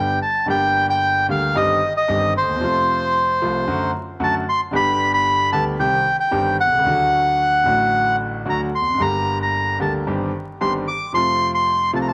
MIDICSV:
0, 0, Header, 1, 3, 480
1, 0, Start_track
1, 0, Key_signature, -2, "minor"
1, 0, Tempo, 533333
1, 428, Time_signature, 4, 2, 24, 8
1, 10918, End_track
2, 0, Start_track
2, 0, Title_t, "Bandoneon"
2, 0, Program_c, 0, 23
2, 0, Note_on_c, 0, 79, 85
2, 172, Note_off_c, 0, 79, 0
2, 200, Note_on_c, 0, 81, 90
2, 419, Note_off_c, 0, 81, 0
2, 449, Note_on_c, 0, 79, 99
2, 778, Note_off_c, 0, 79, 0
2, 809, Note_on_c, 0, 79, 96
2, 1140, Note_off_c, 0, 79, 0
2, 1177, Note_on_c, 0, 77, 88
2, 1408, Note_on_c, 0, 75, 96
2, 1416, Note_off_c, 0, 77, 0
2, 1740, Note_off_c, 0, 75, 0
2, 1772, Note_on_c, 0, 75, 99
2, 2102, Note_off_c, 0, 75, 0
2, 2136, Note_on_c, 0, 72, 86
2, 3521, Note_off_c, 0, 72, 0
2, 3813, Note_on_c, 0, 81, 96
2, 3914, Note_off_c, 0, 81, 0
2, 4043, Note_on_c, 0, 84, 106
2, 4146, Note_off_c, 0, 84, 0
2, 4285, Note_on_c, 0, 83, 117
2, 4606, Note_off_c, 0, 83, 0
2, 4625, Note_on_c, 0, 83, 110
2, 4954, Note_off_c, 0, 83, 0
2, 4973, Note_on_c, 0, 81, 96
2, 5081, Note_off_c, 0, 81, 0
2, 5217, Note_on_c, 0, 79, 96
2, 5549, Note_off_c, 0, 79, 0
2, 5581, Note_on_c, 0, 79, 91
2, 5912, Note_off_c, 0, 79, 0
2, 5943, Note_on_c, 0, 78, 96
2, 7345, Note_off_c, 0, 78, 0
2, 7647, Note_on_c, 0, 82, 89
2, 7750, Note_off_c, 0, 82, 0
2, 7876, Note_on_c, 0, 84, 99
2, 8113, Note_on_c, 0, 82, 107
2, 8119, Note_off_c, 0, 84, 0
2, 8446, Note_off_c, 0, 82, 0
2, 8482, Note_on_c, 0, 82, 85
2, 8808, Note_off_c, 0, 82, 0
2, 8834, Note_on_c, 0, 81, 74
2, 8940, Note_off_c, 0, 81, 0
2, 9550, Note_on_c, 0, 84, 89
2, 9657, Note_off_c, 0, 84, 0
2, 9789, Note_on_c, 0, 86, 101
2, 10010, Note_off_c, 0, 86, 0
2, 10030, Note_on_c, 0, 84, 109
2, 10360, Note_off_c, 0, 84, 0
2, 10392, Note_on_c, 0, 84, 99
2, 10720, Note_off_c, 0, 84, 0
2, 10763, Note_on_c, 0, 81, 72
2, 10785, Note_off_c, 0, 81, 0
2, 10816, Note_on_c, 0, 82, 64
2, 10867, Note_off_c, 0, 82, 0
2, 10872, Note_on_c, 0, 81, 74
2, 10918, Note_off_c, 0, 81, 0
2, 10918, End_track
3, 0, Start_track
3, 0, Title_t, "Grand piano"
3, 0, Program_c, 1, 0
3, 0, Note_on_c, 1, 31, 73
3, 0, Note_on_c, 1, 43, 77
3, 0, Note_on_c, 1, 50, 67
3, 0, Note_on_c, 1, 55, 57
3, 0, Note_on_c, 1, 59, 59
3, 0, Note_on_c, 1, 67, 73
3, 142, Note_off_c, 1, 50, 0
3, 144, Note_off_c, 1, 31, 0
3, 144, Note_off_c, 1, 55, 0
3, 145, Note_off_c, 1, 59, 0
3, 146, Note_off_c, 1, 43, 0
3, 146, Note_off_c, 1, 67, 0
3, 413, Note_on_c, 1, 50, 69
3, 423, Note_on_c, 1, 55, 64
3, 428, Note_on_c, 1, 31, 77
3, 429, Note_on_c, 1, 43, 83
3, 437, Note_on_c, 1, 58, 64
3, 449, Note_on_c, 1, 67, 79
3, 1114, Note_off_c, 1, 50, 0
3, 1118, Note_off_c, 1, 55, 0
3, 1121, Note_off_c, 1, 31, 0
3, 1122, Note_off_c, 1, 43, 0
3, 1125, Note_off_c, 1, 58, 0
3, 1131, Note_off_c, 1, 67, 0
3, 1159, Note_on_c, 1, 50, 84
3, 1162, Note_on_c, 1, 55, 61
3, 1164, Note_on_c, 1, 58, 64
3, 1165, Note_on_c, 1, 38, 83
3, 1165, Note_on_c, 1, 67, 75
3, 1363, Note_off_c, 1, 55, 0
3, 1364, Note_off_c, 1, 38, 0
3, 1364, Note_off_c, 1, 50, 0
3, 1364, Note_off_c, 1, 58, 0
3, 1364, Note_off_c, 1, 67, 0
3, 1398, Note_on_c, 1, 43, 88
3, 1398, Note_on_c, 1, 51, 69
3, 1401, Note_on_c, 1, 31, 82
3, 1401, Note_on_c, 1, 60, 71
3, 1403, Note_on_c, 1, 55, 67
3, 1403, Note_on_c, 1, 67, 80
3, 1601, Note_off_c, 1, 51, 0
3, 1602, Note_off_c, 1, 31, 0
3, 1602, Note_off_c, 1, 43, 0
3, 1602, Note_off_c, 1, 60, 0
3, 1603, Note_off_c, 1, 67, 0
3, 1604, Note_off_c, 1, 55, 0
3, 1875, Note_on_c, 1, 43, 87
3, 1879, Note_on_c, 1, 55, 71
3, 1881, Note_on_c, 1, 31, 83
3, 1882, Note_on_c, 1, 51, 66
3, 1883, Note_on_c, 1, 60, 69
3, 1883, Note_on_c, 1, 67, 82
3, 2082, Note_off_c, 1, 31, 0
3, 2082, Note_off_c, 1, 55, 0
3, 2083, Note_off_c, 1, 43, 0
3, 2083, Note_off_c, 1, 51, 0
3, 2084, Note_off_c, 1, 60, 0
3, 2084, Note_off_c, 1, 67, 0
3, 2180, Note_on_c, 1, 38, 50
3, 2239, Note_on_c, 1, 39, 64
3, 2240, Note_off_c, 1, 38, 0
3, 2299, Note_off_c, 1, 39, 0
3, 2301, Note_on_c, 1, 40, 78
3, 2336, Note_on_c, 1, 48, 77
3, 2346, Note_on_c, 1, 53, 90
3, 2356, Note_on_c, 1, 41, 87
3, 2360, Note_off_c, 1, 40, 0
3, 2360, Note_on_c, 1, 57, 70
3, 2372, Note_on_c, 1, 65, 81
3, 3028, Note_off_c, 1, 48, 0
3, 3037, Note_off_c, 1, 53, 0
3, 3038, Note_off_c, 1, 41, 0
3, 3040, Note_off_c, 1, 57, 0
3, 3046, Note_off_c, 1, 65, 0
3, 3075, Note_on_c, 1, 48, 83
3, 3076, Note_on_c, 1, 53, 70
3, 3077, Note_on_c, 1, 36, 92
3, 3078, Note_on_c, 1, 57, 68
3, 3080, Note_on_c, 1, 65, 81
3, 3275, Note_off_c, 1, 36, 0
3, 3275, Note_off_c, 1, 53, 0
3, 3276, Note_off_c, 1, 48, 0
3, 3276, Note_off_c, 1, 57, 0
3, 3277, Note_off_c, 1, 65, 0
3, 3308, Note_on_c, 1, 42, 97
3, 3308, Note_on_c, 1, 54, 86
3, 3310, Note_on_c, 1, 50, 70
3, 3313, Note_on_c, 1, 57, 67
3, 3313, Note_on_c, 1, 66, 86
3, 3509, Note_off_c, 1, 42, 0
3, 3510, Note_off_c, 1, 50, 0
3, 3510, Note_off_c, 1, 54, 0
3, 3511, Note_off_c, 1, 57, 0
3, 3511, Note_off_c, 1, 66, 0
3, 3779, Note_on_c, 1, 42, 90
3, 3780, Note_on_c, 1, 50, 69
3, 3780, Note_on_c, 1, 54, 92
3, 3782, Note_on_c, 1, 57, 71
3, 3783, Note_on_c, 1, 66, 83
3, 3983, Note_off_c, 1, 42, 0
3, 3983, Note_off_c, 1, 50, 0
3, 3984, Note_off_c, 1, 54, 0
3, 3984, Note_off_c, 1, 57, 0
3, 3984, Note_off_c, 1, 66, 0
3, 4242, Note_on_c, 1, 50, 78
3, 4250, Note_on_c, 1, 55, 71
3, 4258, Note_on_c, 1, 31, 90
3, 4259, Note_on_c, 1, 43, 93
3, 4265, Note_on_c, 1, 59, 69
3, 4276, Note_on_c, 1, 67, 94
3, 4929, Note_off_c, 1, 50, 0
3, 4934, Note_off_c, 1, 55, 0
3, 4937, Note_off_c, 1, 31, 0
3, 4938, Note_off_c, 1, 43, 0
3, 4941, Note_off_c, 1, 59, 0
3, 4947, Note_off_c, 1, 67, 0
3, 4973, Note_on_c, 1, 50, 90
3, 4973, Note_on_c, 1, 55, 69
3, 4974, Note_on_c, 1, 38, 90
3, 4976, Note_on_c, 1, 59, 69
3, 4977, Note_on_c, 1, 67, 86
3, 5174, Note_off_c, 1, 55, 0
3, 5175, Note_off_c, 1, 38, 0
3, 5175, Note_off_c, 1, 59, 0
3, 5176, Note_off_c, 1, 50, 0
3, 5176, Note_off_c, 1, 67, 0
3, 5213, Note_on_c, 1, 48, 86
3, 5213, Note_on_c, 1, 51, 79
3, 5213, Note_on_c, 1, 55, 70
3, 5217, Note_on_c, 1, 60, 70
3, 5218, Note_on_c, 1, 36, 92
3, 5219, Note_on_c, 1, 67, 84
3, 5414, Note_off_c, 1, 48, 0
3, 5414, Note_off_c, 1, 51, 0
3, 5414, Note_off_c, 1, 55, 0
3, 5416, Note_off_c, 1, 36, 0
3, 5416, Note_off_c, 1, 60, 0
3, 5417, Note_off_c, 1, 67, 0
3, 5680, Note_on_c, 1, 51, 74
3, 5685, Note_on_c, 1, 43, 92
3, 5685, Note_on_c, 1, 67, 85
3, 5686, Note_on_c, 1, 55, 71
3, 5687, Note_on_c, 1, 31, 89
3, 5687, Note_on_c, 1, 60, 69
3, 5888, Note_off_c, 1, 51, 0
3, 5891, Note_off_c, 1, 43, 0
3, 5891, Note_off_c, 1, 55, 0
3, 5891, Note_off_c, 1, 67, 0
3, 5892, Note_off_c, 1, 31, 0
3, 5892, Note_off_c, 1, 60, 0
3, 5986, Note_on_c, 1, 35, 53
3, 6048, Note_on_c, 1, 36, 66
3, 6050, Note_off_c, 1, 35, 0
3, 6108, Note_on_c, 1, 37, 81
3, 6110, Note_off_c, 1, 36, 0
3, 6153, Note_on_c, 1, 50, 76
3, 6167, Note_off_c, 1, 50, 0
3, 6168, Note_on_c, 1, 54, 69
3, 6170, Note_on_c, 1, 38, 93
3, 6171, Note_off_c, 1, 37, 0
3, 6175, Note_on_c, 1, 50, 90
3, 6178, Note_on_c, 1, 57, 69
3, 6189, Note_on_c, 1, 66, 85
3, 6854, Note_off_c, 1, 54, 0
3, 6855, Note_off_c, 1, 38, 0
3, 6857, Note_off_c, 1, 50, 0
3, 6859, Note_off_c, 1, 57, 0
3, 6865, Note_off_c, 1, 66, 0
3, 6871, Note_on_c, 1, 50, 68
3, 6882, Note_on_c, 1, 54, 65
3, 6888, Note_on_c, 1, 45, 82
3, 6889, Note_on_c, 1, 33, 84
3, 6895, Note_on_c, 1, 57, 66
3, 6906, Note_on_c, 1, 66, 78
3, 7570, Note_off_c, 1, 50, 0
3, 7576, Note_off_c, 1, 54, 0
3, 7579, Note_off_c, 1, 33, 0
3, 7579, Note_off_c, 1, 45, 0
3, 7582, Note_off_c, 1, 57, 0
3, 7588, Note_off_c, 1, 66, 0
3, 7610, Note_on_c, 1, 50, 86
3, 7612, Note_on_c, 1, 54, 64
3, 7614, Note_on_c, 1, 38, 82
3, 7616, Note_on_c, 1, 66, 78
3, 7617, Note_on_c, 1, 57, 64
3, 7819, Note_off_c, 1, 54, 0
3, 7820, Note_off_c, 1, 38, 0
3, 7820, Note_off_c, 1, 50, 0
3, 7821, Note_off_c, 1, 57, 0
3, 7821, Note_off_c, 1, 66, 0
3, 7924, Note_on_c, 1, 40, 46
3, 7983, Note_off_c, 1, 40, 0
3, 7987, Note_on_c, 1, 41, 60
3, 8044, Note_on_c, 1, 42, 71
3, 8046, Note_off_c, 1, 41, 0
3, 8083, Note_on_c, 1, 50, 68
3, 8098, Note_on_c, 1, 55, 67
3, 8101, Note_on_c, 1, 31, 85
3, 8104, Note_off_c, 1, 42, 0
3, 8104, Note_on_c, 1, 43, 83
3, 8109, Note_on_c, 1, 58, 66
3, 8122, Note_on_c, 1, 67, 80
3, 8779, Note_off_c, 1, 50, 0
3, 8786, Note_off_c, 1, 55, 0
3, 8787, Note_off_c, 1, 31, 0
3, 8789, Note_off_c, 1, 43, 0
3, 8791, Note_off_c, 1, 58, 0
3, 8798, Note_off_c, 1, 67, 0
3, 8818, Note_on_c, 1, 50, 87
3, 8820, Note_on_c, 1, 38, 76
3, 8824, Note_on_c, 1, 55, 62
3, 8824, Note_on_c, 1, 58, 69
3, 8824, Note_on_c, 1, 67, 78
3, 9024, Note_off_c, 1, 38, 0
3, 9024, Note_off_c, 1, 50, 0
3, 9026, Note_off_c, 1, 55, 0
3, 9026, Note_off_c, 1, 58, 0
3, 9026, Note_off_c, 1, 67, 0
3, 9063, Note_on_c, 1, 43, 87
3, 9065, Note_on_c, 1, 31, 84
3, 9065, Note_on_c, 1, 60, 66
3, 9066, Note_on_c, 1, 55, 70
3, 9067, Note_on_c, 1, 51, 65
3, 9069, Note_on_c, 1, 67, 84
3, 9267, Note_off_c, 1, 31, 0
3, 9267, Note_off_c, 1, 60, 0
3, 9268, Note_off_c, 1, 43, 0
3, 9268, Note_off_c, 1, 51, 0
3, 9268, Note_off_c, 1, 55, 0
3, 9269, Note_off_c, 1, 67, 0
3, 9547, Note_on_c, 1, 51, 66
3, 9548, Note_on_c, 1, 31, 85
3, 9549, Note_on_c, 1, 43, 88
3, 9551, Note_on_c, 1, 55, 68
3, 9551, Note_on_c, 1, 60, 63
3, 9552, Note_on_c, 1, 67, 77
3, 9749, Note_off_c, 1, 51, 0
3, 9750, Note_off_c, 1, 31, 0
3, 9750, Note_off_c, 1, 43, 0
3, 9751, Note_off_c, 1, 55, 0
3, 9751, Note_off_c, 1, 60, 0
3, 9752, Note_off_c, 1, 67, 0
3, 10013, Note_on_c, 1, 48, 72
3, 10026, Note_on_c, 1, 53, 87
3, 10031, Note_on_c, 1, 41, 89
3, 10036, Note_on_c, 1, 57, 71
3, 10049, Note_on_c, 1, 65, 88
3, 10698, Note_off_c, 1, 48, 0
3, 10706, Note_off_c, 1, 53, 0
3, 10707, Note_off_c, 1, 41, 0
3, 10709, Note_off_c, 1, 57, 0
3, 10716, Note_off_c, 1, 65, 0
3, 10739, Note_on_c, 1, 36, 86
3, 10739, Note_on_c, 1, 48, 92
3, 10740, Note_on_c, 1, 53, 70
3, 10741, Note_on_c, 1, 57, 72
3, 10742, Note_on_c, 1, 65, 77
3, 10918, Note_off_c, 1, 36, 0
3, 10918, Note_off_c, 1, 48, 0
3, 10918, Note_off_c, 1, 53, 0
3, 10918, Note_off_c, 1, 57, 0
3, 10918, Note_off_c, 1, 65, 0
3, 10918, End_track
0, 0, End_of_file